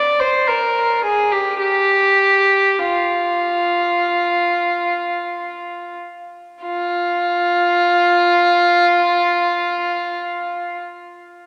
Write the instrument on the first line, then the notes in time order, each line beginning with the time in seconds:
violin
Already playing: D5
0.19 C5
0.47 A#4
1.04 G#4
1.32 G4
1.59 G4
2.79 F4
6.62 F4